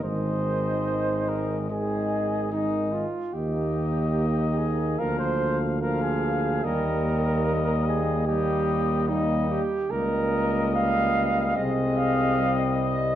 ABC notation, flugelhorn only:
X:1
M:4/4
L:1/16
Q:1/4=73
K:Ab
V:1 name="Flugelhorn"
c6 B2 A4 E2 F2 | G6 A2 B c2 z B A3 | B6 A2 G4 E2 G2 | B4 f4 e2 f4 e2 |]